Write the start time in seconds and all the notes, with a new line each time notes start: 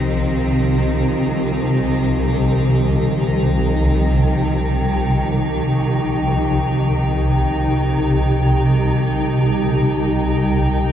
Already playing: C2 C3 D#3 F3 C4 D#4 D#5
3.68 G5
5.42 D#4